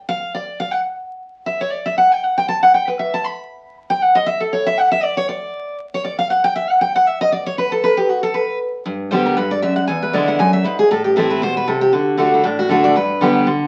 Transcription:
0.09 F5
0.34 D5
0.60 F5
0.71 F#5
1.46 E5
1.61 C#5
1.71 D5
1.86 E5
1.98 F#5
2.12 G5
2.24 F#5
2.38 G5
2.48 A5
2.63 F#5
2.74 G5
2.88 B4
2.99 E5
3.14 A5
3.24 B5
3.90 G5
4.02 F#5
4.15 D#5
4.26 E5
4.40 A4
4.53 C#5
4.66 E5
4.78 F#5
4.92 E5
5.03 D5
5.17 C#5
5.29 D5
5.94 C#5
6.04 D5
6.19 F5
6.30 F#5
6.44 G5
6.56 E5
6.70 F#5
6.81 G5
6.96 F#5
7.07 E5
7.21 D#5
7.32 D5
7.46 C#5
7.58 B4
7.72 A4
7.84 B4
7.97 G4
8.09 F#4
8.23 A4
8.34 B4
8.85 G2
9.11 D3 G3 B3 G4 C5
9.26 A#4
9.37 G2 B4
9.51 D5
9.62 F#2 E5
9.76 F#5
9.87 E2 G#5
10.03 B4
10.13 D3 G#3 B3 E4 D5
10.28 F#5
10.39 F#2 G#5
10.53 E5
10.64 G#2 B4
10.79 G#4
10.91 A2 A4
11.04 G4
11.16 E3 A3 C4 E4 A4
11.30 B4
11.42 B2 C5
11.57 B4
11.68 C3 A4
11.81 G4
11.93 D3 F#4
12.18 D3 A3 D4 F#4
12.34 E4
12.44 A2 D4
12.59 F#4
12.69 D3 A3 D4 F#4 A4
12.84 D5
12.95 G2 B4
13.21 D3 G3 B3 G4
13.47 D3

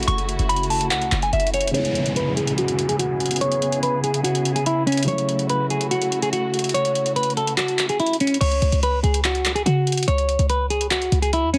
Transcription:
Already playing: C#3 E3 F#3 A3 E4 F#4
0.03 closed hi-hat
0.08 F#1 C#6, closed hi-hat
0.18 closed hi-hat
0.29 closed hi-hat
0.39 F#1, closed hi-hat
0.49 B5, closed hi-hat
0.56 closed hi-hat
0.63 closed hi-hat
0.70 A5, open hi-hat
0.81 closed hi-hat
0.91 C#2 F#5, clap, closed hi-hat
1.02 closed hi-hat
1.12 F#1, clap, closed hi-hat
1.22 G#5, closed hi-hat
1.33 F#1 E5, closed hi-hat
1.40 closed hi-hat
1.47 closed hi-hat
1.54 C#5, closed hi-hat
1.61 closed hi-hat
1.68 C#3, closed hi-hat
1.73 C#3 G#3 B3 E4 G#4 C#5, closed hi-hat, downlifter
1.78 E4
1.85 closed hi-hat
1.95 closed hi-hat
2.06 closed hi-hat
2.16 B4, closed hi-hat
2.37 G#4, closed hi-hat
2.47 closed hi-hat
2.58 F#4, closed hi-hat
2.68 closed hi-hat
2.79 closed hi-hat
2.89 G#4, closed hi-hat
2.99 F#4, closed hi-hat
3.20 closed hi-hat
3.26 closed hi-hat
3.31 closed hi-hat
3.36 closed hi-hat
3.41 C#5, closed hi-hat
3.52 closed hi-hat
3.62 closed hi-hat
3.72 closed hi-hat
3.83 B4, closed hi-hat
4.04 G#4, closed hi-hat
4.14 closed hi-hat
4.24 F#4, closed hi-hat
4.35 closed hi-hat
4.45 closed hi-hat
4.56 G#4, closed hi-hat
4.66 E4, closed hi-hat
4.87 C#4, closed hi-hat
4.92 closed hi-hat
4.97 closed hi-hat
5.03 C#3, closed hi-hat
5.07 F#3 A3 F#4 C#5, closed hi-hat
5.11 E4
5.18 closed hi-hat
5.29 closed hi-hat
5.39 closed hi-hat
5.50 B4, closed hi-hat
5.70 G#4, closed hi-hat
5.81 closed hi-hat
5.91 F#4, closed hi-hat
6.02 closed hi-hat
6.12 closed hi-hat
6.22 G#4, closed hi-hat
6.33 F#4, closed hi-hat
6.54 closed hi-hat
6.59 closed hi-hat
6.64 closed hi-hat
6.69 closed hi-hat
6.74 C#5, closed hi-hat
6.85 closed hi-hat
6.95 closed hi-hat
7.06 closed hi-hat
7.16 B4, closed hi-hat
7.23 closed hi-hat
7.30 closed hi-hat
7.37 A4, closed hi-hat
7.47 closed hi-hat
7.57 F#4, clap, closed hi-hat
7.68 closed hi-hat
7.79 clap, closed hi-hat
7.89 G#4, closed hi-hat
8.00 E4, closed hi-hat
8.06 closed hi-hat
8.13 closed hi-hat
8.20 C#4, closed hi-hat
8.27 closed hi-hat
8.34 closed hi-hat
8.41 C#2 C#5, closed hi-hat, crash
8.52 closed hi-hat
8.62 C#2, closed hi-hat
8.72 C#2, closed hi-hat
8.83 B4, closed hi-hat
9.04 C#2 G#4, closed hi-hat
9.14 closed hi-hat
9.24 F#4, clap, closed hi-hat
9.35 closed hi-hat
9.45 clap, closed hi-hat
9.55 G#4, closed hi-hat
9.66 C#3 F#4, closed hi-hat
9.87 closed hi-hat
9.92 closed hi-hat
9.97 closed hi-hat
10.03 closed hi-hat
10.08 C#2 C#5, closed hi-hat
10.18 closed hi-hat
10.29 closed hi-hat
10.39 C#2, closed hi-hat
10.50 B4, closed hi-hat
10.70 G#4, closed hi-hat
10.81 closed hi-hat
10.91 F#4, clap, closed hi-hat
11.02 closed hi-hat
11.12 C#2, closed hi-hat
11.22 G#4, closed hi-hat
11.33 E4, closed hi-hat
11.43 E2
11.54 C#4, closed hi-hat

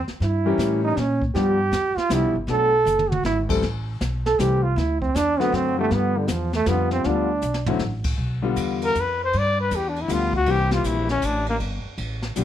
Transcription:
0.08 muted upright bass stroke, snare
0.20 G2 E4, brush sweep, snare
0.45 E3 G3 C#4 G4 A#4
0.58 A2, snare, hi-hat pedal
0.84 D#4
0.97 A#2 C#4, snare
1.22 kick
1.35 G2 F3 G3 B3 D4 G4, brush sweep, snare
1.72 F2, snare, hi-hat pedal
1.96 F4, muted upright bass stroke, snare
2.09 C2 F3 G3 B3 D4 E4 G4, snare, hi-hat pedal
2.23 B1
2.35 G1
2.47 B1 F#3 A3 B3 D4 A4, brush sweep, snare
2.85 F#1, hi-hat pedal, mid tom
2.99 mid tom
3.10 F#4, mid tom
3.24 G#1 E4, snare
3.49 E3 G3 A3 C4 A4, kick, crash
3.62 A1, brush sweep, snare
4.01 B1, snare, hi-hat pedal
4.26 A4, snare
4.39 C2 E3 G3 A3 C4 G4, snare, hi-hat pedal
4.63 F4
4.76 D2 E4, brush sweep, snare
5.01 C4, kick
5.15 E2 D4, snare, hi-hat pedal
5.39 D3 F#3 A3 B3 C4 F#4, snare
5.52 F#2 C4, snare
5.78 D3 F3 G3 A3 B3 G4
5.91 G2 B3, brush sweep, snare
6.18 D3
6.28 E2 F3, snare, hi-hat pedal
6.53 A3, snare
6.66 F2 D3 F3 G3 B3 F4, snare, hi-hat pedal
6.91 C4, snare
7.04 D2 D3 F3 G3 B3 D4 F4, brush sweep, snare
7.42 B1, hi-hat pedal
7.54 snare
7.66 D3 F#3 A3 C4 E4, floor tom
7.79 A1, snare
8.04 kick, crash
8.18 B1
8.42 D3 G3 B3 F4
8.56 E2, hi-hat pedal, ride
8.82 A#4, ride
8.95 F2, hi-hat pedal
9.00 B4
9.24 C5
9.33 G2, ride
9.38 D5
9.60 B4
9.71 E2, hi-hat pedal, ride
9.76 G4
9.89 D4
9.96 ride
10.01 E4
10.08 D2 D3 F3 G3 B3 F4, hi-hat pedal, ride
10.13 F4
10.33 F#4, kick
10.46 C2 E3 G3 A#3 C4 G4, ride
10.51 G4
10.71 F4, snare
10.84 A#1 E4, hi-hat pedal, ride
11.09 C#4, snare, ride
11.22 A1 D4, hi-hat pedal, ride
11.46 A#3, ride
11.60 G1, ride
11.85 muted upright bass stroke
11.98 A1, ride
12.22 snare
12.36 B1 F3 G3 B3 D4 G4, hi-hat pedal, ride

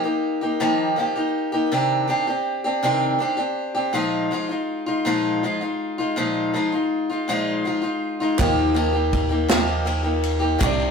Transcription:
0.04 A#3 D#4 G4
0.41 A#3 D#4 G4
0.60 D#3 F3 A#3 D#4 G4
0.96 F3 A#3 D#4 G4
1.15 A#3 D#4 G4
1.52 A#3 D#4 G4
1.72 C3 D#3 C4 D4 G4
2.08 D#3 C4 D4 G4
2.27 C4 D4 G4
2.64 C4 D4 G4
2.83 C3 D#3 C4 D4 G4
3.19 D#3 C4 D4 G4
3.37 C4 D4 G4
3.75 C4 D4 G4
3.93 A#2 F3 G#3 D#4 F4
4.31 F3 G#3 D#4 F4
4.49 G#3 D#4 F4
4.86 G#3 D#4 F4
5.05 A#2 F3 G#3 D#4 F4
5.43 F3 G#3 D#4 F4
5.61 G#3 D#4 F4
5.98 G#3 D#4 F4
6.16 A#2 F3 G#3 D#4 F4
6.54 F3 G#3 D#4 F4
6.72 G#3 D#4 F4
7.10 G#3 D#4 F4
7.28 A#2 F3 G#3 D#4 F4
7.65 F3 G#3 D#4 F4
7.82 G#3 D#4 F4
8.20 G#3 D#4 F4
8.37 D#2 D#3 F3 A#3 D#4 F4 G4 D#5, kick, clap, ride
8.59 clap
8.74 F3 A#3 D#4 G4, ride
8.93 A#3 D#4 G4
9.13 kick, ride
9.29 A#3 D#4 G4
9.48 D#2 D#3 F3 A#3 D#4 G4, snare, clap, ride
9.68 clap
9.85 F3 A#3 D#4 G4, clap, ride
10.03 A#3 D#4 G4
10.23 ride
10.40 A#3 D#4 G4
10.59 C2 C3 D#3 C4 D4 D#4 G4, kick, clap, ride
10.63 G4 D5
10.81 clap

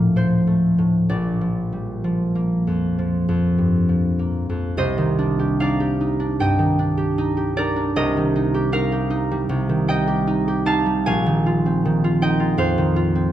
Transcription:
Already playing: D2 A2 A#2 F3 A3 F5
0.16 F3 C5
0.47 A3
0.78 A2
1.09 A#1 D5
1.41 F3
1.72 G3
2.04 F3
2.35 A#3
2.67 F2
2.99 F3
3.29 F2
3.58 G2
3.89 F3
4.19 A#3
4.49 F2
4.77 C2 C5 D#5
4.98 D#3
5.19 D4
5.39 G4
5.60 D#4 D5 F5
5.80 G4
6.01 D#4
6.20 D4
6.40 G2 D#5 G5
6.59 D#3
6.79 D4
6.97 G4
7.18 D#4
7.37 G4
7.56 D#4 A#4 D5
7.76 D4
7.96 C2 A#4 D#5
8.17 D#3
8.36 D#4
8.54 G4
8.72 D#4 A#4 F5
8.92 G4
9.10 D#4
9.31 G3
9.49 C2
9.69 D#3
9.88 D#4 D#5 G5
10.07 G4
10.27 D#4
10.48 G4
10.66 D#4 F5 A5
10.86 G3
11.06 A#1 F5 G#5
11.26 D#3
11.46 F4
11.66 C4
11.85 D#3
12.04 F4
12.22 D#4 D#5 G5
12.40 F4
12.58 F2 C5 F5
12.78 D#3
12.96 F4
13.15 C4

